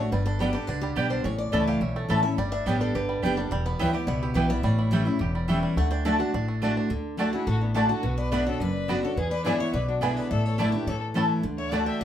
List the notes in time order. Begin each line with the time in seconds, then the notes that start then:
Already playing: D4
0.00 A3 D4 F#4 C#5
0.12 G1 G2 G3 B4
0.26 D4 A4
0.39 G3 B3 D4 F#4 G4 D5 G5
0.53 G4 A4
0.57 D4
0.67 C#2 D3 D4 B4
0.81 G3 G4
0.96 B1 G3 B3 D4 G4 D5 G5
1.10 D4 C5
1.24 A1 A2 C#4 C#5
1.38 D5
1.52 C#2 E3 A3 C#4 E4 A4 E5 A5
1.67 G4 F5
1.81 B1 E2 C#4 E5
1.96 A3 A4
2.09 A1 E3 A3 C#4 E4 A4 C#5 E5 A5
2.23 C#4 E4 E5
2.38 G1 G2 G3 D5
2.52 D4 E5
2.66 A1 G3 B3 D4 G4 C#5 D5 G5
2.81 D4 A4
2.95 G1 D3 G4 B4
3.09 G3
3.22 F#1 G3 B3 D4 G4 D5 G5
3.37 G3 D4 G4 A4
3.51 E1 E2 G3 G4
3.66 B3 B4
3.79 D2 E3 G3 B3 E4 B4 C#5 G5
3.93 B3 E4 G4 D5
4.07 C#2 B2 B3 E5
4.22 E4 G4
4.34 B1 E3 G3 B3 E4 G4 B4 G5
4.48 G3 B3 E4 E5
4.63 A1 A2 G3 C#5
4.79 E4
4.91 E3 G3 A3 C#4 E4 C#5 G5
5.05 C#4 E4
5.19 E1 E2 G4
5.35 G3
5.48 E3 G3 A3 C#4 E4 C#5 G5
5.63 G3
5.76 D2 D3 A3 F#5
5.91 D4 G5
6.05 D3 A3 D4 F#4 D5 A5
6.19 D4 F#4 A5
6.34 A1 A2 D4
6.48 A3
6.62 D3 A3 D4 F#4 D5 A5
6.77 D4
6.90 D2 D3
7.17 D3 A3 D4 F#4 D5 A5
7.33 D4 E4 F#4 G#4
7.47 A1 A2 F#4 A4
7.61 B3 D4
7.74 D3 A3 D4 F#4 D5 A5
7.89 D4 F#4 A4
8.03 B1 B2 F#4 B4
8.18 B4 D5
8.32 D3 B3 D4 F#4 B4 D5 E5 F#5
8.47 D4 F#4 A4 C#5
8.60 F#1 F#2 B4 D5
8.88 D3 B3 D4 F#4 D5 F#5
9.03 D4 F#4 A4 C#5
9.16 E2 G#4 B4
9.31 B4 D5
9.45 D3 G#3 B3 D4 E4 G#4 C#5 D5 G#5
9.60 B3 E4 C#5 E5
9.73 B1 B2 B4 D5
9.88 D4 F#4
10.01 D3 G#3 B3 D4 E4 G#4 B4 D5 G#5
10.17 B4 D5
10.31 A1 A2 A4 E5
10.46 A4 C#5
10.58 D3 A3 D4 E4 A4 D5 A5
10.72 D4 E4 G4 B4
10.87 A1 A2 A4 C#5
11.14 E3 A3 C#4 E4 A4 E5 A5
11.43 D2 D3
11.58 C#5 E5
11.71 D3 A3 D4 F#4 D5 F#5 A5
11.86 E5 G5
12.01 A2 F#5